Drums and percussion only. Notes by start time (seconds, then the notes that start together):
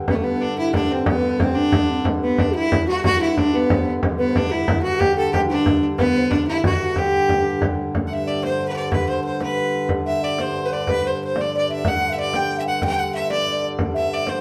0.08 frame drum
0.57 frame drum
0.74 frame drum
1.06 frame drum
1.40 frame drum
1.56 frame drum
1.72 frame drum
2.05 frame drum
2.38 frame drum
2.55 frame drum
2.72 frame drum
3.04 frame drum
3.21 frame drum
3.37 frame drum
3.70 frame drum
3.87 frame drum
4.03 frame drum
4.36 frame drum
4.51 frame drum
4.68 frame drum
5.01 frame drum
5.34 frame drum
5.50 frame drum
5.66 frame drum
5.99 frame drum
6.31 frame drum
6.48 frame drum
6.64 frame drum
6.96 frame drum
7.12 frame drum
7.29 frame drum
7.62 frame drum
7.95 frame drum
8.43 frame drum
8.60 frame drum
8.76 frame drum
8.92 frame drum
9.41 frame drum
9.57 frame drum
9.74 frame drum
9.89 frame drum
10.38 frame drum
10.55 frame drum
10.71 frame drum
10.87 frame drum
11.04 frame drum
11.36 frame drum
11.69 frame drum
11.85 frame drum
12.34 frame drum
12.50 frame drum
12.66 frame drum
12.82 frame drum
13.30 frame drum
13.46 frame drum
13.63 frame drum
13.79 frame drum
14.27 frame drum